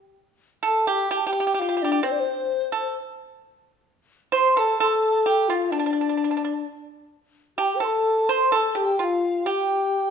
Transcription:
0.63 0.85 A4 medium
0.63 0.90 A4 medium
0.63 0.87 A5 medium
0.87 1.09 G4 medium
0.87 1.10 G4 medium
0.87 0.93 A5 medium
0.92 1.10 G5 medium
1.11 1.24 G4 medium
1.11 1.19 G5 medium
1.17 1.25 A5 medium
1.25 1.52 G4 medium
1.25 1.31 G4 medium
1.25 1.30 A5 medium
1.29 1.39 G4 medium
1.29 1.61 G5 loud
1.40 1.46 G4 medium
1.47 1.53 G4 soft
1.52 1.61 G4 medium
1.52 1.60 G4 medium
1.59 1.84 F4 medium
1.59 1.67 G4 medium
1.59 1.84 F5 medium
1.69 1.76 G4 medium
1.77 1.83 G4 medium
1.82 2.05 D4 medium
1.82 1.91 G4 medium
1.82 2.07 D5 medium
1.92 1.99 G4 medium
2.03 2.69 C4 medium
2.03 2.13 C5 medium
2.03 2.97 C5 medium
2.12 2.21 D5 medium
2.20 2.97 C5 medium
2.72 2.94 A4 medium
4.32 4.54 C5 medium
4.32 4.60 C5 medium
4.32 4.61 C6 loud
4.57 4.78 A4 medium
4.57 4.80 A4 medium
4.57 4.81 A5 medium
4.80 5.23 A4 medium
4.80 5.50 A4 medium
4.80 4.89 C6 medium
4.88 5.24 A5 loud
5.26 5.47 G4 medium
5.26 5.51 G5 medium
5.48 5.73 F4 medium
5.48 5.71 F4 medium
5.48 5.55 G5 medium
5.54 5.75 F5 medium
5.71 6.64 D4 medium
5.71 5.78 D4 medium
5.71 6.65 D5 medium
5.79 5.85 D4 soft
5.86 5.92 D4 medium
5.93 6.00 D4 soft
6.01 6.08 D4 soft
6.09 6.16 D4 soft
6.17 6.23 D4 soft
6.24 6.30 D4 soft
6.31 6.36 D4 soft
6.37 6.43 D4 soft
6.44 6.52 D4 soft
7.58 7.80 G4 medium
7.58 7.77 G4 medium
7.58 7.64 A5 medium
7.63 7.85 G5 medium
7.76 7.85 C5 medium
7.80 8.25 A4 medium
7.80 8.31 A4 medium
7.80 7.88 C6 medium
7.87 8.33 A5 medium
8.29 8.51 C5 medium
8.29 8.54 C5 medium
8.29 8.58 C6 loud
8.52 8.74 A4 medium
8.52 8.78 A4 medium
8.56 8.80 A5 loud
8.75 8.97 G4 medium
8.75 9.00 G4 medium
8.80 9.05 G5 medium
8.80 8.85 A5 medium
8.99 9.43 F4 medium
8.99 9.47 F4 medium
9.04 9.51 F5 medium
9.46 10.10 G4 medium
9.46 10.10 G5 medium

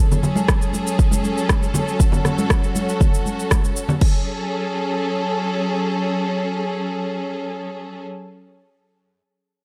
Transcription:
0.00 3.97 F#3 medium
0.00 3.97 C#4 medium
0.00 1.98 G#4 medium
0.00 3.97 A4 medium
0.12 low conga medium
0.12 shaker soft
0.23 low conga medium
0.23 shaker soft
0.36 high conga medium
0.36 shaker soft
0.48 kick loud
0.48 cross-stick loud
0.48 shaker soft
0.62 shaker soft
0.73 high conga medium
0.73 shaker medium
0.87 shaker medium
0.99 kick loud
0.99 shaker soft
1.11 high conga medium
1.11 shaker medium
1.24 high conga soft
1.24 shaker soft
1.38 shaker soft
1.49 kick loud
1.49 cross-stick loud
1.49 high conga medium
1.49 shaker medium
1.63 shaker soft
1.74 high conga soft
1.74 low conga medium
1.74 shaker medium
1.88 shaker soft
2.00 3.99 F#4 medium
2.00 kick loud
2.00 shaker medium
2.12 low conga medium
2.12 shaker soft
2.25 cross-stick medium
2.25 low conga medium
2.25 shaker soft
2.38 high conga medium
2.38 shaker soft
2.50 kick loud
2.50 cross-stick loud
2.50 shaker soft
2.64 shaker soft
2.75 high conga medium
2.75 shaker medium
2.89 shaker medium
3.00 kick loud
3.00 low conga medium
3.00 shaker soft
3.14 shaker medium
3.26 high conga medium
3.26 shaker soft
3.39 shaker soft
3.51 kick loud
3.51 cross-stick loud
3.51 high conga medium
3.51 shaker medium
3.65 shaker soft
3.76 shaker medium
3.89 low conga loud
3.89 shaker soft
4.01 8.04 F#3 medium
4.01 8.04 C#4 medium
4.01 8.04 G#4 medium
4.01 8.04 A4 medium
4.01 kick loud
4.01 crash medium

